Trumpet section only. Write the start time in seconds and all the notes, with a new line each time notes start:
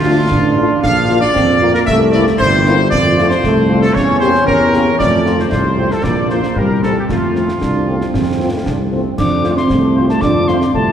Already playing: F4
0.82 F5
1.21 D5
1.75 A#4
1.87 E5
2.12 D5
2.39 C5
2.91 D5
3.29 C5
3.82 A4
3.94 C#5
4.20 C5
4.47 A#4
4.99 D5
5.40 C5
5.92 A4
6.03 D5
6.30 C5
6.57 A#4
6.84 A4
6.98 G4
7.11 F4
9.43 C5
9.96 C5
10.49 C5